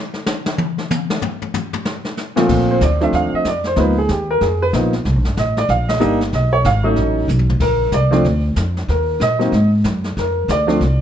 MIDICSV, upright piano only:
0, 0, Header, 1, 2, 480
1, 0, Start_track
1, 0, Key_signature, -2, "major"
1, 0, Tempo, 319149
1, 1835, Time_signature, 4, 2, 24, 8
1, 16564, End_track
2, 0, Start_track
2, 0, Title_t, "Upright piano"
2, 0, Program_c, 0, 0
2, 3551, Note_on_c, 0, 46, 84
2, 3553, Note_on_c, 0, 53, 75
2, 3562, Note_on_c, 0, 57, 80
2, 3573, Note_on_c, 0, 60, 78
2, 3577, Note_on_c, 0, 65, 87
2, 4074, Note_on_c, 0, 72, 78
2, 4184, Note_off_c, 0, 46, 0
2, 4185, Note_off_c, 0, 53, 0
2, 4190, Note_off_c, 0, 57, 0
2, 4195, Note_off_c, 0, 60, 0
2, 4197, Note_off_c, 0, 65, 0
2, 4238, Note_off_c, 0, 72, 0
2, 4256, Note_on_c, 0, 74, 76
2, 4515, Note_on_c, 0, 53, 61
2, 4521, Note_on_c, 0, 57, 56
2, 4525, Note_on_c, 0, 60, 57
2, 4529, Note_off_c, 0, 74, 0
2, 4534, Note_on_c, 0, 62, 67
2, 4555, Note_on_c, 0, 76, 72
2, 4718, Note_off_c, 0, 76, 0
2, 4736, Note_on_c, 0, 77, 86
2, 5010, Note_off_c, 0, 77, 0
2, 5038, Note_on_c, 0, 75, 90
2, 5146, Note_off_c, 0, 53, 0
2, 5149, Note_off_c, 0, 57, 0
2, 5151, Note_off_c, 0, 60, 0
2, 5156, Note_off_c, 0, 62, 0
2, 5199, Note_off_c, 0, 75, 0
2, 5232, Note_on_c, 0, 74, 76
2, 5498, Note_off_c, 0, 74, 0
2, 5521, Note_on_c, 0, 72, 84
2, 5652, Note_on_c, 0, 53, 57
2, 5658, Note_on_c, 0, 58, 60
2, 5669, Note_on_c, 0, 59, 54
2, 5670, Note_on_c, 0, 63, 66
2, 5681, Note_off_c, 0, 72, 0
2, 5712, Note_on_c, 0, 71, 70
2, 5927, Note_off_c, 0, 53, 0
2, 5929, Note_off_c, 0, 58, 0
2, 5935, Note_off_c, 0, 59, 0
2, 5936, Note_off_c, 0, 63, 0
2, 5978, Note_off_c, 0, 71, 0
2, 5990, Note_on_c, 0, 68, 81
2, 6156, Note_off_c, 0, 68, 0
2, 6174, Note_on_c, 0, 67, 68
2, 6449, Note_off_c, 0, 67, 0
2, 6476, Note_on_c, 0, 70, 94
2, 6639, Note_off_c, 0, 70, 0
2, 6642, Note_on_c, 0, 68, 61
2, 6923, Note_off_c, 0, 68, 0
2, 6955, Note_on_c, 0, 71, 100
2, 7056, Note_off_c, 0, 71, 0
2, 7116, Note_on_c, 0, 53, 58
2, 7120, Note_on_c, 0, 58, 52
2, 7129, Note_on_c, 0, 59, 50
2, 7136, Note_on_c, 0, 63, 63
2, 7379, Note_off_c, 0, 53, 0
2, 7381, Note_off_c, 0, 58, 0
2, 7386, Note_off_c, 0, 59, 0
2, 7389, Note_off_c, 0, 63, 0
2, 8099, Note_on_c, 0, 75, 80
2, 8372, Note_off_c, 0, 75, 0
2, 8392, Note_on_c, 0, 74, 87
2, 8558, Note_off_c, 0, 74, 0
2, 8572, Note_on_c, 0, 77, 82
2, 8849, Note_off_c, 0, 77, 0
2, 8852, Note_on_c, 0, 75, 84
2, 9019, Note_on_c, 0, 55, 74
2, 9021, Note_on_c, 0, 58, 72
2, 9033, Note_on_c, 0, 62, 69
2, 9037, Note_on_c, 0, 63, 87
2, 9292, Note_off_c, 0, 55, 0
2, 9293, Note_off_c, 0, 58, 0
2, 9296, Note_off_c, 0, 75, 0
2, 9298, Note_off_c, 0, 62, 0
2, 9301, Note_off_c, 0, 63, 0
2, 9540, Note_on_c, 0, 75, 77
2, 9813, Note_off_c, 0, 75, 0
2, 9816, Note_on_c, 0, 73, 91
2, 9990, Note_off_c, 0, 73, 0
2, 10016, Note_on_c, 0, 77, 97
2, 10275, Note_on_c, 0, 54, 65
2, 10277, Note_on_c, 0, 57, 65
2, 10289, Note_on_c, 0, 61, 64
2, 10292, Note_off_c, 0, 77, 0
2, 10294, Note_on_c, 0, 63, 81
2, 10316, Note_on_c, 0, 75, 73
2, 10750, Note_off_c, 0, 75, 0
2, 10909, Note_off_c, 0, 54, 0
2, 10910, Note_off_c, 0, 57, 0
2, 10916, Note_off_c, 0, 61, 0
2, 10919, Note_off_c, 0, 63, 0
2, 11454, Note_on_c, 0, 70, 88
2, 11891, Note_off_c, 0, 70, 0
2, 11945, Note_on_c, 0, 74, 86
2, 12196, Note_on_c, 0, 53, 82
2, 12209, Note_on_c, 0, 60, 70
2, 12211, Note_on_c, 0, 57, 67
2, 12221, Note_on_c, 0, 62, 81
2, 12368, Note_off_c, 0, 53, 0
2, 12375, Note_off_c, 0, 60, 0
2, 12376, Note_off_c, 0, 57, 0
2, 12381, Note_off_c, 0, 62, 0
2, 12653, Note_off_c, 0, 74, 0
2, 13387, Note_on_c, 0, 70, 64
2, 13819, Note_off_c, 0, 70, 0
2, 13865, Note_on_c, 0, 75, 96
2, 14120, Note_on_c, 0, 54, 64
2, 14123, Note_on_c, 0, 58, 52
2, 14126, Note_on_c, 0, 60, 57
2, 14133, Note_on_c, 0, 63, 72
2, 14292, Note_off_c, 0, 54, 0
2, 14293, Note_off_c, 0, 58, 0
2, 14294, Note_off_c, 0, 60, 0
2, 14298, Note_off_c, 0, 63, 0
2, 14575, Note_off_c, 0, 75, 0
2, 15320, Note_on_c, 0, 70, 69
2, 15747, Note_off_c, 0, 70, 0
2, 15802, Note_on_c, 0, 74, 84
2, 16047, Note_on_c, 0, 53, 69
2, 16051, Note_on_c, 0, 57, 65
2, 16054, Note_on_c, 0, 60, 62
2, 16062, Note_on_c, 0, 62, 81
2, 16216, Note_off_c, 0, 53, 0
2, 16219, Note_off_c, 0, 57, 0
2, 16220, Note_off_c, 0, 60, 0
2, 16224, Note_off_c, 0, 62, 0
2, 16505, Note_off_c, 0, 74, 0
2, 16564, End_track
0, 0, End_of_file